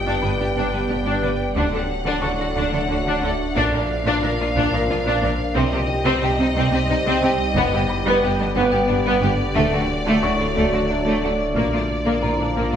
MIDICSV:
0, 0, Header, 1, 10, 480
1, 0, Start_track
1, 0, Tempo, 666667
1, 1124, Time_signature, 6, 3, 24, 8
1, 9188, End_track
2, 0, Start_track
2, 0, Title_t, "Felt piano"
2, 0, Program_c, 0, 0
2, 0, Control_c, 0, 64, 127
2, 0, Note_on_c, 0, 65, 38
2, 0, Note_on_c, 0, 77, 53
2, 156, Note_on_c, 0, 83, 36
2, 161, Note_on_c, 0, 71, 36
2, 1092, Note_off_c, 0, 65, 0
2, 1094, Note_off_c, 0, 77, 0
2, 1138, Control_c, 0, 64, 0
2, 1246, Control_c, 0, 64, 127
2, 1571, Note_off_c, 0, 83, 0
2, 1574, Note_off_c, 0, 71, 0
2, 1598, Note_on_c, 0, 85, 49
2, 2578, Control_c, 0, 64, 0
2, 2695, Control_c, 0, 64, 127
2, 3012, Note_off_c, 0, 85, 0
2, 4019, Control_c, 0, 64, 0
2, 4117, Control_c, 0, 64, 127
2, 4236, Note_on_c, 0, 67, 53
2, 4236, Note_on_c, 0, 79, 61
2, 5458, Control_c, 0, 64, 0
2, 5572, Control_c, 0, 64, 127
2, 5651, Note_off_c, 0, 67, 0
2, 5651, Note_off_c, 0, 79, 0
2, 5682, Note_on_c, 0, 83, 70
2, 6897, Control_c, 0, 64, 0
2, 7025, Control_c, 0, 64, 127
2, 7094, Note_off_c, 0, 83, 0
2, 7365, Note_on_c, 0, 85, 69
2, 8338, Control_c, 0, 64, 0
2, 8448, Control_c, 0, 64, 127
2, 8776, Note_off_c, 0, 85, 0
2, 8800, Note_on_c, 0, 82, 57
2, 8805, Note_on_c, 0, 70, 36
2, 9188, Note_off_c, 0, 70, 0
2, 9188, Note_off_c, 0, 82, 0
2, 9188, End_track
3, 0, Start_track
3, 0, Title_t, "Violin section"
3, 0, Program_c, 1, 48
3, 0, Note_on_c, 1, 79, 52
3, 1096, Note_off_c, 1, 79, 0
3, 1129, Note_on_c, 1, 78, 58
3, 2538, Note_off_c, 1, 78, 0
3, 2558, Note_on_c, 1, 77, 62
3, 4001, Note_off_c, 1, 77, 0
3, 4004, Note_on_c, 1, 75, 78
3, 6164, Note_off_c, 1, 75, 0
3, 6165, Note_on_c, 1, 74, 71
3, 8317, Note_off_c, 1, 74, 0
3, 8326, Note_on_c, 1, 74, 54
3, 9188, Note_off_c, 1, 74, 0
3, 9188, End_track
4, 0, Start_track
4, 0, Title_t, "Synth drone"
4, 0, Program_c, 2, 95
4, 0, Note_on_c, 2, 55, 60
4, 0, Note_on_c, 2, 59, 61
4, 0, Note_on_c, 2, 67, 64
4, 0, Note_on_c, 2, 74, 63
4, 1096, Note_off_c, 2, 55, 0
4, 1097, Note_off_c, 2, 67, 0
4, 1128, Note_off_c, 2, 59, 0
4, 1136, Note_on_c, 2, 66, 65
4, 1142, Note_on_c, 2, 57, 66
4, 1142, Note_on_c, 2, 62, 70
4, 2570, Note_off_c, 2, 66, 0
4, 2573, Note_off_c, 2, 57, 0
4, 2578, Note_on_c, 2, 58, 70
4, 2579, Note_on_c, 2, 65, 70
4, 4006, Note_off_c, 2, 74, 0
4, 4007, Note_on_c, 2, 55, 74
4, 4010, Note_on_c, 2, 67, 67
4, 4011, Note_off_c, 2, 58, 0
4, 4011, Note_off_c, 2, 65, 0
4, 4012, Note_on_c, 2, 63, 69
4, 4013, Note_off_c, 2, 62, 0
4, 4015, Note_on_c, 2, 72, 68
4, 5442, Note_on_c, 2, 71, 73
4, 5448, Note_off_c, 2, 63, 0
4, 5449, Note_off_c, 2, 72, 0
4, 5452, Note_on_c, 2, 50, 77
4, 6879, Note_on_c, 2, 74, 75
4, 6883, Note_off_c, 2, 71, 0
4, 6885, Note_on_c, 2, 57, 70
4, 6886, Note_off_c, 2, 55, 0
4, 6886, Note_on_c, 2, 66, 66
4, 6887, Note_off_c, 2, 67, 0
4, 8323, Note_on_c, 2, 58, 67
4, 8324, Note_off_c, 2, 57, 0
4, 8325, Note_off_c, 2, 66, 0
4, 8328, Note_on_c, 2, 65, 67
4, 9188, Note_off_c, 2, 50, 0
4, 9188, Note_off_c, 2, 58, 0
4, 9188, Note_off_c, 2, 65, 0
4, 9188, Note_off_c, 2, 74, 0
4, 9188, End_track
5, 0, Start_track
5, 0, Title_t, "Violin section"
5, 0, Program_c, 3, 48
5, 65, Note_on_c, 3, 62, 66
5, 167, Note_off_c, 3, 62, 0
5, 173, Note_on_c, 3, 71, 46
5, 219, Note_off_c, 3, 71, 0
5, 288, Note_on_c, 3, 67, 44
5, 335, Note_off_c, 3, 67, 0
5, 401, Note_on_c, 3, 62, 71
5, 514, Note_off_c, 3, 62, 0
5, 522, Note_on_c, 3, 71, 46
5, 570, Note_off_c, 3, 71, 0
5, 636, Note_on_c, 3, 67, 42
5, 686, Note_off_c, 3, 67, 0
5, 757, Note_on_c, 3, 62, 62
5, 872, Note_off_c, 3, 62, 0
5, 883, Note_on_c, 3, 71, 50
5, 931, Note_off_c, 3, 71, 0
5, 1125, Note_on_c, 3, 62, 54
5, 1236, Note_off_c, 3, 62, 0
5, 1243, Note_on_c, 3, 69, 45
5, 1291, Note_off_c, 3, 69, 0
5, 1484, Note_on_c, 3, 62, 74
5, 1596, Note_off_c, 3, 62, 0
5, 1602, Note_on_c, 3, 69, 52
5, 1650, Note_off_c, 3, 69, 0
5, 1727, Note_on_c, 3, 66, 47
5, 1775, Note_off_c, 3, 66, 0
5, 1850, Note_on_c, 3, 62, 67
5, 1959, Note_off_c, 3, 62, 0
5, 1978, Note_on_c, 3, 69, 48
5, 2023, Note_off_c, 3, 69, 0
5, 2096, Note_on_c, 3, 66, 50
5, 2142, Note_off_c, 3, 66, 0
5, 2214, Note_on_c, 3, 62, 67
5, 2321, Note_off_c, 3, 62, 0
5, 2332, Note_on_c, 3, 69, 60
5, 2378, Note_off_c, 3, 69, 0
5, 2564, Note_on_c, 3, 62, 78
5, 2676, Note_off_c, 3, 62, 0
5, 2698, Note_on_c, 3, 70, 48
5, 2743, Note_off_c, 3, 70, 0
5, 2932, Note_on_c, 3, 62, 81
5, 3040, Note_off_c, 3, 62, 0
5, 3054, Note_on_c, 3, 70, 58
5, 3100, Note_off_c, 3, 70, 0
5, 3176, Note_on_c, 3, 65, 57
5, 3222, Note_off_c, 3, 65, 0
5, 3298, Note_on_c, 3, 62, 76
5, 3403, Note_off_c, 3, 62, 0
5, 3417, Note_on_c, 3, 70, 63
5, 3463, Note_off_c, 3, 70, 0
5, 3535, Note_on_c, 3, 65, 57
5, 3581, Note_off_c, 3, 65, 0
5, 3654, Note_on_c, 3, 62, 77
5, 3761, Note_off_c, 3, 62, 0
5, 3773, Note_on_c, 3, 70, 65
5, 3819, Note_off_c, 3, 70, 0
5, 4006, Note_on_c, 3, 60, 72
5, 4117, Note_off_c, 3, 60, 0
5, 4134, Note_on_c, 3, 67, 54
5, 4180, Note_off_c, 3, 67, 0
5, 4377, Note_on_c, 3, 60, 92
5, 4483, Note_off_c, 3, 60, 0
5, 4493, Note_on_c, 3, 67, 59
5, 4539, Note_off_c, 3, 67, 0
5, 4617, Note_on_c, 3, 63, 63
5, 4663, Note_off_c, 3, 63, 0
5, 4728, Note_on_c, 3, 60, 79
5, 4838, Note_off_c, 3, 60, 0
5, 4853, Note_on_c, 3, 67, 64
5, 4899, Note_off_c, 3, 67, 0
5, 4966, Note_on_c, 3, 63, 62
5, 5014, Note_off_c, 3, 63, 0
5, 5093, Note_on_c, 3, 60, 87
5, 5200, Note_off_c, 3, 60, 0
5, 5213, Note_on_c, 3, 67, 70
5, 5259, Note_off_c, 3, 67, 0
5, 5451, Note_on_c, 3, 59, 85
5, 5559, Note_off_c, 3, 59, 0
5, 5571, Note_on_c, 3, 67, 55
5, 5618, Note_off_c, 3, 67, 0
5, 5817, Note_on_c, 3, 59, 83
5, 5923, Note_off_c, 3, 59, 0
5, 5932, Note_on_c, 3, 67, 61
5, 5979, Note_off_c, 3, 67, 0
5, 6046, Note_on_c, 3, 62, 61
5, 6093, Note_off_c, 3, 62, 0
5, 6153, Note_on_c, 3, 59, 84
5, 6270, Note_off_c, 3, 59, 0
5, 6273, Note_on_c, 3, 67, 65
5, 6323, Note_off_c, 3, 67, 0
5, 6391, Note_on_c, 3, 62, 65
5, 6442, Note_off_c, 3, 62, 0
5, 6515, Note_on_c, 3, 59, 89
5, 6631, Note_off_c, 3, 59, 0
5, 6641, Note_on_c, 3, 67, 62
5, 6690, Note_off_c, 3, 67, 0
5, 6873, Note_on_c, 3, 57, 77
5, 6990, Note_off_c, 3, 57, 0
5, 7013, Note_on_c, 3, 66, 55
5, 7059, Note_off_c, 3, 66, 0
5, 7256, Note_on_c, 3, 57, 79
5, 7362, Note_off_c, 3, 57, 0
5, 7367, Note_on_c, 3, 66, 55
5, 7414, Note_off_c, 3, 66, 0
5, 7490, Note_on_c, 3, 62, 57
5, 7537, Note_off_c, 3, 62, 0
5, 7607, Note_on_c, 3, 57, 68
5, 7717, Note_off_c, 3, 57, 0
5, 7731, Note_on_c, 3, 66, 49
5, 7777, Note_off_c, 3, 66, 0
5, 7844, Note_on_c, 3, 62, 49
5, 7892, Note_off_c, 3, 62, 0
5, 7969, Note_on_c, 3, 57, 70
5, 8078, Note_off_c, 3, 57, 0
5, 8091, Note_on_c, 3, 66, 50
5, 8137, Note_off_c, 3, 66, 0
5, 8330, Note_on_c, 3, 58, 61
5, 8439, Note_off_c, 3, 58, 0
5, 8452, Note_on_c, 3, 65, 42
5, 8499, Note_off_c, 3, 65, 0
5, 8686, Note_on_c, 3, 58, 62
5, 8797, Note_off_c, 3, 58, 0
5, 8803, Note_on_c, 3, 65, 48
5, 8851, Note_off_c, 3, 65, 0
5, 8925, Note_on_c, 3, 62, 45
5, 8973, Note_off_c, 3, 62, 0
5, 9045, Note_on_c, 3, 58, 61
5, 9156, Note_off_c, 3, 58, 0
5, 9156, Note_on_c, 3, 65, 41
5, 9188, Note_off_c, 3, 65, 0
5, 9188, End_track
6, 0, Start_track
6, 0, Title_t, "Viola section"
6, 0, Program_c, 4, 48
6, 47, Note_on_c, 4, 62, 60
6, 152, Note_off_c, 4, 62, 0
6, 161, Note_on_c, 4, 62, 46
6, 209, Note_off_c, 4, 62, 0
6, 290, Note_on_c, 4, 62, 46
6, 337, Note_off_c, 4, 62, 0
6, 415, Note_on_c, 4, 62, 59
6, 519, Note_off_c, 4, 62, 0
6, 527, Note_on_c, 4, 62, 49
6, 575, Note_off_c, 4, 62, 0
6, 646, Note_on_c, 4, 62, 51
6, 693, Note_off_c, 4, 62, 0
6, 767, Note_on_c, 4, 62, 67
6, 877, Note_off_c, 4, 62, 0
6, 886, Note_on_c, 4, 62, 47
6, 933, Note_off_c, 4, 62, 0
6, 1133, Note_on_c, 4, 62, 64
6, 1240, Note_off_c, 4, 62, 0
6, 1254, Note_on_c, 4, 62, 42
6, 1300, Note_off_c, 4, 62, 0
6, 1492, Note_on_c, 4, 62, 63
6, 1600, Note_off_c, 4, 62, 0
6, 1614, Note_on_c, 4, 62, 47
6, 1660, Note_off_c, 4, 62, 0
6, 1743, Note_on_c, 4, 62, 45
6, 1788, Note_off_c, 4, 62, 0
6, 1857, Note_on_c, 4, 62, 66
6, 1963, Note_off_c, 4, 62, 0
6, 1979, Note_on_c, 4, 62, 50
6, 2024, Note_off_c, 4, 62, 0
6, 2096, Note_on_c, 4, 62, 54
6, 2141, Note_off_c, 4, 62, 0
6, 2215, Note_on_c, 4, 62, 70
6, 2322, Note_off_c, 4, 62, 0
6, 2336, Note_on_c, 4, 62, 59
6, 2381, Note_off_c, 4, 62, 0
6, 2574, Note_on_c, 4, 62, 76
6, 2681, Note_off_c, 4, 62, 0
6, 2698, Note_on_c, 4, 62, 54
6, 2743, Note_off_c, 4, 62, 0
6, 2929, Note_on_c, 4, 62, 77
6, 3038, Note_off_c, 4, 62, 0
6, 3052, Note_on_c, 4, 62, 57
6, 3099, Note_off_c, 4, 62, 0
6, 3170, Note_on_c, 4, 62, 65
6, 3217, Note_off_c, 4, 62, 0
6, 3282, Note_on_c, 4, 62, 76
6, 3391, Note_off_c, 4, 62, 0
6, 3400, Note_on_c, 4, 62, 61
6, 3448, Note_off_c, 4, 62, 0
6, 3526, Note_on_c, 4, 62, 59
6, 3573, Note_off_c, 4, 62, 0
6, 3638, Note_on_c, 4, 62, 80
6, 3753, Note_off_c, 4, 62, 0
6, 3763, Note_on_c, 4, 62, 70
6, 3811, Note_off_c, 4, 62, 0
6, 3991, Note_on_c, 4, 60, 79
6, 4107, Note_off_c, 4, 60, 0
6, 4115, Note_on_c, 4, 60, 64
6, 4165, Note_off_c, 4, 60, 0
6, 4358, Note_on_c, 4, 60, 94
6, 4473, Note_off_c, 4, 60, 0
6, 4482, Note_on_c, 4, 60, 62
6, 4530, Note_off_c, 4, 60, 0
6, 4604, Note_on_c, 4, 60, 61
6, 4652, Note_off_c, 4, 60, 0
6, 4725, Note_on_c, 4, 60, 83
6, 4836, Note_off_c, 4, 60, 0
6, 4847, Note_on_c, 4, 60, 72
6, 4894, Note_off_c, 4, 60, 0
6, 4966, Note_on_c, 4, 60, 71
6, 5014, Note_off_c, 4, 60, 0
6, 5084, Note_on_c, 4, 60, 96
6, 5196, Note_off_c, 4, 60, 0
6, 5207, Note_on_c, 4, 60, 67
6, 5255, Note_off_c, 4, 60, 0
6, 5447, Note_on_c, 4, 59, 79
6, 5557, Note_off_c, 4, 59, 0
6, 5567, Note_on_c, 4, 59, 67
6, 5614, Note_off_c, 4, 59, 0
6, 5805, Note_on_c, 4, 59, 85
6, 5916, Note_off_c, 4, 59, 0
6, 5929, Note_on_c, 4, 59, 56
6, 5976, Note_off_c, 4, 59, 0
6, 6045, Note_on_c, 4, 59, 63
6, 6093, Note_off_c, 4, 59, 0
6, 6162, Note_on_c, 4, 59, 81
6, 6274, Note_off_c, 4, 59, 0
6, 6286, Note_on_c, 4, 59, 63
6, 6334, Note_off_c, 4, 59, 0
6, 6412, Note_on_c, 4, 59, 68
6, 6458, Note_off_c, 4, 59, 0
6, 6528, Note_on_c, 4, 59, 88
6, 6638, Note_off_c, 4, 59, 0
6, 6647, Note_on_c, 4, 59, 62
6, 6694, Note_off_c, 4, 59, 0
6, 6889, Note_on_c, 4, 57, 76
6, 6998, Note_off_c, 4, 57, 0
6, 7010, Note_on_c, 4, 57, 58
6, 7057, Note_off_c, 4, 57, 0
6, 7250, Note_on_c, 4, 57, 82
6, 7354, Note_off_c, 4, 57, 0
6, 7363, Note_on_c, 4, 57, 53
6, 7411, Note_off_c, 4, 57, 0
6, 7483, Note_on_c, 4, 57, 58
6, 7531, Note_off_c, 4, 57, 0
6, 7593, Note_on_c, 4, 57, 72
6, 7707, Note_off_c, 4, 57, 0
6, 7716, Note_on_c, 4, 57, 57
6, 7765, Note_off_c, 4, 57, 0
6, 7835, Note_on_c, 4, 57, 56
6, 7885, Note_off_c, 4, 57, 0
6, 7953, Note_on_c, 4, 57, 62
6, 8066, Note_off_c, 4, 57, 0
6, 8075, Note_on_c, 4, 57, 50
6, 8125, Note_off_c, 4, 57, 0
6, 8316, Note_on_c, 4, 58, 65
6, 8431, Note_off_c, 4, 58, 0
6, 8440, Note_on_c, 4, 58, 41
6, 8489, Note_off_c, 4, 58, 0
6, 8675, Note_on_c, 4, 58, 65
6, 8791, Note_off_c, 4, 58, 0
6, 8799, Note_on_c, 4, 58, 38
6, 8848, Note_off_c, 4, 58, 0
6, 8932, Note_on_c, 4, 58, 51
6, 8978, Note_off_c, 4, 58, 0
6, 9040, Note_on_c, 4, 58, 60
6, 9154, Note_off_c, 4, 58, 0
6, 9164, Note_on_c, 4, 58, 41
6, 9188, Note_off_c, 4, 58, 0
6, 9188, End_track
7, 0, Start_track
7, 0, Title_t, "French horn section"
7, 0, Program_c, 5, 60
7, 0, Note_on_c, 5, 55, 58
7, 0, Note_on_c, 5, 59, 58
7, 1091, Note_off_c, 5, 55, 0
7, 1096, Note_off_c, 5, 59, 0
7, 1134, Note_on_c, 5, 62, 57
7, 1136, Note_on_c, 5, 54, 60
7, 2450, Note_off_c, 5, 54, 0
7, 2572, Note_on_c, 5, 53, 71
7, 3979, Note_off_c, 5, 53, 0
7, 3980, Note_off_c, 5, 62, 0
7, 4001, Note_on_c, 5, 63, 76
7, 4005, Note_on_c, 5, 55, 79
7, 5414, Note_off_c, 5, 63, 0
7, 5439, Note_on_c, 5, 59, 81
7, 6757, Note_off_c, 5, 55, 0
7, 6757, Note_off_c, 5, 59, 0
7, 6879, Note_on_c, 5, 62, 75
7, 6884, Note_on_c, 5, 54, 82
7, 8295, Note_off_c, 5, 54, 0
7, 8333, Note_on_c, 5, 53, 58
7, 9188, Note_off_c, 5, 53, 0
7, 9188, Note_off_c, 5, 62, 0
7, 9188, End_track
8, 0, Start_track
8, 0, Title_t, "Cello section"
8, 0, Program_c, 6, 48
8, 40, Note_on_c, 6, 43, 66
8, 89, Note_off_c, 6, 43, 0
8, 166, Note_on_c, 6, 43, 43
8, 213, Note_off_c, 6, 43, 0
8, 282, Note_on_c, 6, 43, 45
8, 330, Note_off_c, 6, 43, 0
8, 405, Note_on_c, 6, 43, 67
8, 453, Note_off_c, 6, 43, 0
8, 525, Note_on_c, 6, 43, 43
8, 573, Note_off_c, 6, 43, 0
8, 642, Note_on_c, 6, 43, 48
8, 690, Note_off_c, 6, 43, 0
8, 762, Note_on_c, 6, 43, 63
8, 810, Note_off_c, 6, 43, 0
8, 883, Note_on_c, 6, 43, 47
8, 931, Note_off_c, 6, 43, 0
8, 1121, Note_on_c, 6, 50, 67
8, 1170, Note_off_c, 6, 50, 0
8, 1241, Note_on_c, 6, 50, 52
8, 1290, Note_off_c, 6, 50, 0
8, 1482, Note_on_c, 6, 50, 71
8, 1531, Note_off_c, 6, 50, 0
8, 1598, Note_on_c, 6, 50, 49
8, 1647, Note_off_c, 6, 50, 0
8, 1721, Note_on_c, 6, 50, 51
8, 1769, Note_off_c, 6, 50, 0
8, 1842, Note_on_c, 6, 50, 74
8, 1891, Note_off_c, 6, 50, 0
8, 1962, Note_on_c, 6, 50, 50
8, 2010, Note_off_c, 6, 50, 0
8, 2078, Note_on_c, 6, 50, 51
8, 2127, Note_off_c, 6, 50, 0
8, 2204, Note_on_c, 6, 50, 75
8, 2252, Note_off_c, 6, 50, 0
8, 2324, Note_on_c, 6, 50, 55
8, 2372, Note_off_c, 6, 50, 0
8, 2561, Note_on_c, 6, 46, 73
8, 2610, Note_off_c, 6, 46, 0
8, 2684, Note_on_c, 6, 46, 54
8, 2732, Note_off_c, 6, 46, 0
8, 2919, Note_on_c, 6, 46, 81
8, 2968, Note_off_c, 6, 46, 0
8, 3041, Note_on_c, 6, 46, 56
8, 3089, Note_off_c, 6, 46, 0
8, 3164, Note_on_c, 6, 46, 55
8, 3212, Note_off_c, 6, 46, 0
8, 3285, Note_on_c, 6, 46, 88
8, 3333, Note_off_c, 6, 46, 0
8, 3406, Note_on_c, 6, 46, 57
8, 3453, Note_off_c, 6, 46, 0
8, 3522, Note_on_c, 6, 46, 57
8, 3570, Note_off_c, 6, 46, 0
8, 3647, Note_on_c, 6, 46, 82
8, 3694, Note_off_c, 6, 46, 0
8, 3762, Note_on_c, 6, 46, 62
8, 3811, Note_off_c, 6, 46, 0
8, 4007, Note_on_c, 6, 48, 91
8, 4055, Note_off_c, 6, 48, 0
8, 4128, Note_on_c, 6, 48, 67
8, 4175, Note_off_c, 6, 48, 0
8, 4361, Note_on_c, 6, 48, 86
8, 4410, Note_off_c, 6, 48, 0
8, 4486, Note_on_c, 6, 48, 65
8, 4533, Note_off_c, 6, 48, 0
8, 4599, Note_on_c, 6, 48, 64
8, 4648, Note_off_c, 6, 48, 0
8, 4722, Note_on_c, 6, 48, 87
8, 4770, Note_off_c, 6, 48, 0
8, 4839, Note_on_c, 6, 48, 63
8, 4888, Note_off_c, 6, 48, 0
8, 4963, Note_on_c, 6, 48, 64
8, 5011, Note_off_c, 6, 48, 0
8, 5085, Note_on_c, 6, 48, 91
8, 5133, Note_off_c, 6, 48, 0
8, 5208, Note_on_c, 6, 48, 70
8, 5255, Note_off_c, 6, 48, 0
8, 5438, Note_on_c, 6, 43, 98
8, 5487, Note_off_c, 6, 43, 0
8, 5563, Note_on_c, 6, 43, 63
8, 5611, Note_off_c, 6, 43, 0
8, 5802, Note_on_c, 6, 43, 86
8, 5850, Note_off_c, 6, 43, 0
8, 5924, Note_on_c, 6, 43, 62
8, 5972, Note_off_c, 6, 43, 0
8, 6044, Note_on_c, 6, 43, 61
8, 6092, Note_off_c, 6, 43, 0
8, 6163, Note_on_c, 6, 43, 86
8, 6211, Note_off_c, 6, 43, 0
8, 6283, Note_on_c, 6, 43, 58
8, 6331, Note_off_c, 6, 43, 0
8, 6400, Note_on_c, 6, 43, 61
8, 6449, Note_off_c, 6, 43, 0
8, 6520, Note_on_c, 6, 43, 86
8, 6569, Note_off_c, 6, 43, 0
8, 6638, Note_on_c, 6, 43, 65
8, 6687, Note_off_c, 6, 43, 0
8, 6877, Note_on_c, 6, 50, 85
8, 6926, Note_off_c, 6, 50, 0
8, 7003, Note_on_c, 6, 50, 65
8, 7051, Note_off_c, 6, 50, 0
8, 7241, Note_on_c, 6, 50, 81
8, 7289, Note_off_c, 6, 50, 0
8, 7364, Note_on_c, 6, 50, 55
8, 7412, Note_off_c, 6, 50, 0
8, 7484, Note_on_c, 6, 50, 56
8, 7532, Note_off_c, 6, 50, 0
8, 7599, Note_on_c, 6, 50, 75
8, 7648, Note_off_c, 6, 50, 0
8, 7718, Note_on_c, 6, 50, 52
8, 7767, Note_off_c, 6, 50, 0
8, 7837, Note_on_c, 6, 50, 51
8, 7886, Note_off_c, 6, 50, 0
8, 7958, Note_on_c, 6, 50, 74
8, 8007, Note_off_c, 6, 50, 0
8, 8084, Note_on_c, 6, 50, 48
8, 8132, Note_off_c, 6, 50, 0
8, 8318, Note_on_c, 6, 46, 66
8, 8367, Note_off_c, 6, 46, 0
8, 8442, Note_on_c, 6, 46, 45
8, 8491, Note_off_c, 6, 46, 0
8, 8681, Note_on_c, 6, 46, 64
8, 8730, Note_off_c, 6, 46, 0
8, 8802, Note_on_c, 6, 46, 46
8, 8850, Note_off_c, 6, 46, 0
8, 8919, Note_on_c, 6, 46, 44
8, 8968, Note_off_c, 6, 46, 0
8, 9041, Note_on_c, 6, 46, 63
8, 9090, Note_off_c, 6, 46, 0
8, 9159, Note_on_c, 6, 46, 43
8, 9188, Note_off_c, 6, 46, 0
8, 9188, End_track
9, 0, Start_track
9, 0, Title_t, "Double bass section"
9, 0, Program_c, 7, 48
9, 163, Note_on_c, 7, 31, 45
9, 211, Note_off_c, 7, 31, 0
9, 404, Note_on_c, 7, 31, 67
9, 452, Note_off_c, 7, 31, 0
9, 644, Note_on_c, 7, 31, 44
9, 692, Note_off_c, 7, 31, 0
9, 880, Note_on_c, 7, 31, 48
9, 929, Note_off_c, 7, 31, 0
9, 1118, Note_on_c, 7, 38, 73
9, 1167, Note_off_c, 7, 38, 0
9, 1599, Note_on_c, 7, 38, 48
9, 1648, Note_off_c, 7, 38, 0
9, 1842, Note_on_c, 7, 38, 70
9, 1890, Note_off_c, 7, 38, 0
9, 2086, Note_on_c, 7, 38, 52
9, 2134, Note_off_c, 7, 38, 0
9, 2326, Note_on_c, 7, 38, 54
9, 2374, Note_off_c, 7, 38, 0
9, 2564, Note_on_c, 7, 34, 78
9, 2612, Note_off_c, 7, 34, 0
9, 3044, Note_on_c, 7, 34, 51
9, 3092, Note_off_c, 7, 34, 0
9, 3282, Note_on_c, 7, 34, 85
9, 3331, Note_off_c, 7, 34, 0
9, 3527, Note_on_c, 7, 34, 55
9, 3574, Note_off_c, 7, 34, 0
9, 3766, Note_on_c, 7, 34, 55
9, 3813, Note_off_c, 7, 34, 0
9, 4000, Note_on_c, 7, 36, 84
9, 4049, Note_off_c, 7, 36, 0
9, 4478, Note_on_c, 7, 36, 60
9, 4528, Note_off_c, 7, 36, 0
9, 4722, Note_on_c, 7, 36, 91
9, 4770, Note_off_c, 7, 36, 0
9, 4961, Note_on_c, 7, 36, 63
9, 5010, Note_off_c, 7, 36, 0
9, 5204, Note_on_c, 7, 36, 63
9, 5252, Note_off_c, 7, 36, 0
9, 5438, Note_on_c, 7, 31, 92
9, 5487, Note_off_c, 7, 31, 0
9, 5920, Note_on_c, 7, 31, 57
9, 5969, Note_off_c, 7, 31, 0
9, 6160, Note_on_c, 7, 31, 93
9, 6209, Note_off_c, 7, 31, 0
9, 6404, Note_on_c, 7, 31, 63
9, 6452, Note_off_c, 7, 31, 0
9, 6646, Note_on_c, 7, 31, 62
9, 6693, Note_off_c, 7, 31, 0
9, 6885, Note_on_c, 7, 38, 89
9, 6932, Note_off_c, 7, 38, 0
9, 7362, Note_on_c, 7, 38, 54
9, 7411, Note_off_c, 7, 38, 0
9, 7605, Note_on_c, 7, 38, 75
9, 7653, Note_off_c, 7, 38, 0
9, 7846, Note_on_c, 7, 38, 49
9, 7894, Note_off_c, 7, 38, 0
9, 8083, Note_on_c, 7, 38, 49
9, 8131, Note_off_c, 7, 38, 0
9, 8318, Note_on_c, 7, 34, 63
9, 8367, Note_off_c, 7, 34, 0
9, 8804, Note_on_c, 7, 34, 43
9, 8852, Note_off_c, 7, 34, 0
9, 9041, Note_on_c, 7, 34, 69
9, 9090, Note_off_c, 7, 34, 0
9, 9188, End_track
10, 0, Start_track
10, 0, Title_t, "Sub bass"
10, 0, Program_c, 8, 38
10, 0, Note_on_c, 8, 31, 69
10, 1128, Note_on_c, 8, 26, 71
10, 1138, Note_off_c, 8, 31, 0
10, 2567, Note_on_c, 8, 34, 78
10, 2578, Note_off_c, 8, 26, 0
10, 4007, Note_on_c, 8, 36, 82
10, 4017, Note_off_c, 8, 34, 0
10, 5446, Note_on_c, 8, 31, 81
10, 5457, Note_off_c, 8, 36, 0
10, 6885, Note_on_c, 8, 26, 78
10, 6896, Note_off_c, 8, 31, 0
10, 8329, Note_on_c, 8, 34, 73
10, 8340, Note_off_c, 8, 26, 0
10, 9188, Note_off_c, 8, 34, 0
10, 9188, End_track
0, 0, End_of_file